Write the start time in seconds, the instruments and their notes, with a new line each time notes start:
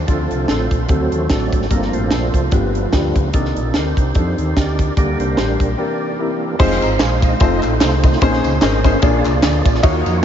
0.07 fm bass D2, upright piano D3 C4 D4 F4 A4, tonewheel organ F3 A3 C4 F4 A4, kick, closed hi-hat
0.31 fm bass C2, closed hi-hat
0.48 fm bass A1, upright piano C4 D4 F4 A4, tonewheel organ F4 A4 C5, snare, closed hi-hat
0.71 fm bass A#1, kick, closed hi-hat
0.83 tonewheel organ B4
0.87 fm bass D2, upright piano D3 C4 D4 F#4 A4, tonewheel organ F#3 A3 C4 F#4 A4 C5, kick, closed hi-hat
1.12 fm bass D#2, closed hi-hat
1.29 fm bass A1, upright piano C4 D4 F#4 A4, tonewheel organ F#4 A4 D5, kick, snare, closed hi-hat
1.53 fm bass G#1, kick, closed hi-hat
1.62 snare
1.70 fm bass G1, upright piano G2 A#3 C4 F4 A4, tonewheel organ F3 A3 A#3 C4 D4 F4 A#4, kick, closed hi-hat
1.82 snare
1.93 fm bass A1, tonewheel organ F4 A4 C5, closed hi-hat
2.11 fm bass A#1, upright piano A#3 C4 F4 A4, snare, closed hi-hat
2.34 fm bass C2, tonewheel organ C5, kick, closed hi-hat
2.51 fm bass G1, upright piano G2 B3 D4 F4 G4, tonewheel organ F3 A3 B3 D4 F4 B4, kick, closed hi-hat
2.75 closed hi-hat
2.93 fm bass D2, upright piano B3 D4 F4 G4, kick, snare, closed hi-hat
3.15 fm bass C#2, kick, closed hi-hat
3.33 fm bass C2, upright piano C3 C4 D4 D#4 A#4, tonewheel organ D#3 A#3 D4 D#4 A4, kick, closed hi-hat
3.45 snare
3.56 fm bass A#1, closed hi-hat
3.74 fm bass D2, upright piano C4 D4 D#4 A#4, tonewheel organ D#4 G4 C5, snare, closed hi-hat
3.97 fm bass C2, kick, closed hi-hat
4.14 fm bass F2, upright piano C4 D4 D#4 A4, tonewheel organ D#4 G4 C5, kick, closed hi-hat
4.38 fm bass D#2, closed hi-hat
4.56 upright piano C4 D4 D#4 G4, tonewheel organ G4 A#4 D5, kick, snare, closed hi-hat
4.79 kick, closed hi-hat
4.97 fm bass D2, upright piano D3 A#3 D4 G4 A#4, tonewheel organ G3 A#3 D4 G4 A#4 D5, kick, closed hi-hat
5.19 fm bass C2, tonewheel organ G4 C5, closed hi-hat
5.37 fm bass A1, upright piano A#3 D4 G4 C5, snare, closed hi-hat
5.60 fm bass A#1, tonewheel organ A#4, kick, closed hi-hat
5.78 upright piano C3 C4 E4 G4 A#4, tonewheel organ E3 A#3 D4 G4 A#4 D5
6.19 upright piano C4 E4 G4 A#4
6.59 fm bass F1, tonewheel organ G#3 C4 D#4 F4 C5, upright piano C4 D#4 F4 G#4 C5, kick, crash, tambourine
6.71 snare
6.82 fm bass G#1, upright piano A#5, ride, tambourine
6.99 fm bass A#1, tonewheel organ G#4 C5, upright piano F5 G#5, snare, clap, ride, tambourine
7.22 tonewheel organ C5 D#5, upright piano F5, kick, ride, tambourine
7.40 fm bass F1, tonewheel organ A3 C4 D#4 F4 C5, upright piano C4 D#4 F4 A4 C5, kick, ride, tambourine
7.63 fm bass A1, clap, ride, tambourine
7.80 fm bass C2, upright piano A4 C5, snare, clap, ride, tambourine
8.03 upright piano C5 D#5, kick, ride, tambourine
8.13 snare
8.21 fm bass A#1, upright piano A#2 C#4 D#4 G#4 A#4 C5, tonewheel organ A#3 C#4 D#4 G#4 C5, kick, ride, tambourine
8.33 snare
8.44 fm bass C#2, ride, tambourine
8.61 fm bass G#1, upright piano C#4 D#4 G#4 A#4 C5, tonewheel organ C5 D#5, snare, clap, ride, tambourine
8.84 upright piano C#4 D#4 G#4 A#4 C5, tonewheel organ C#5 F5, kick, ride, tambourine
9.02 fm bass A#1, upright piano A#2 D4 F4 G#4 A#4 D5, tonewheel organ A#3 D4 F4 G#4 D5, kick, ride, tambourine
9.25 fm bass C2, clap, ride, tambourine
9.42 fm bass D2, upright piano D5 F5, snare, clap, ride, tambourine
9.65 fm bass A#1, upright piano A#4 D5, kick, ride, tambourine
9.75 snare
9.83 fm bass D#2, upright piano D#3 F4 F#4 A#4 C#5 D#5, tonewheel organ A#3 D#4 F4 F#4 C5, kick, ride, tambourine
9.88 tonewheel organ C#5
10.06 fm bass F2, ride, tambourine